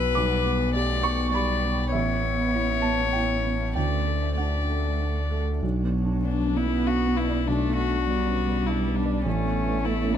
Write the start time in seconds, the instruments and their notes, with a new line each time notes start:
Already playing: felt piano B1 B3 F#4 D6 E6, sub bass B1, cello F#3, ambient pad B3 B4 F#5, violin B4
0.15 felt piano B1 D6, cello G3, ambient pad G5
0.45 felt piano B3
0.73 cello A3, felt piano G4, violin D5
1.03 felt piano B3 C#6
1.33 cello G3, felt piano G4 B5, violin D5
1.65 felt piano B3
1.92 sub bass A1, felt piano A1 E5, cello B3, ambient pad C#4 E5, violin C#5
2.24 felt piano B3
2.54 felt piano E4
2.82 felt piano B3 A5
3.13 felt piano E4 G5
3.46 felt piano B3
3.75 sub bass D2, felt piano D2 G5, cello A3, ambient pad D4 A4 D5, violin D5
4.07 felt piano A3
4.38 cello A3, felt piano D4 F#5, violin D5
4.69 felt piano A3
5.01 felt piano D4
5.31 felt piano A3
5.62 sub bass B1, felt piano B1, cello F#3, ambient pad D4 B4 D5
5.83 felt piano B3
6.04 felt piano D4
6.25 felt piano B3, violin D4
6.46 felt piano C#4
6.56 cello B3, violin E4
6.66 felt piano B3
6.86 felt piano D4, violin F#4
7.07 felt piano B3
7.17 violin E4
7.28 felt piano D5
7.48 felt piano B1, cello A3, violin D4
7.68 felt piano B3
7.77 violin F#4
7.89 felt piano D4
8.08 cello G3, felt piano B3
8.27 felt piano C#4
8.47 felt piano B3
8.66 felt piano D4, violin E4
8.86 felt piano B3
8.96 violin D4
9.06 felt piano D5
9.26 felt piano A1, sub bass A1, cello A3, violin C#4, ambient pad C#5 E5
9.45 felt piano B3
9.65 felt piano E4
9.84 felt piano B3, violin E4
10.03 felt piano C#4
10.14 violin D4